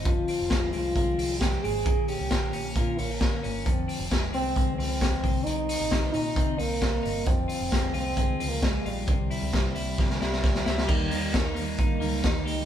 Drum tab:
CC |----------------|----------------|----------------|----------------|
HH |x-o-x-o-x-o-x-o-|x-o-x-o-x-o-x-o-|x-o-x-o-x-o-x-o-|x-o-x-o-x-o-x-o-|
SD |----o-------o---|----o-------o---|----o-------o---|----o-------o---|
BD |o---o---o---o---|o---o---o---o---|o---o---o---o-o-|----o---o---o---|

CC |----------------|----------------|x---------------|
HH |x-o-x-o-x-o-x-o-|x-o-x-o---------|--o-x-o-x-o-x-o-|
SD |----o-------o---|----o---oooooooo|----o-------o---|
BD |o---o---o---o---|o---o---o---o---|o---o---o---o---|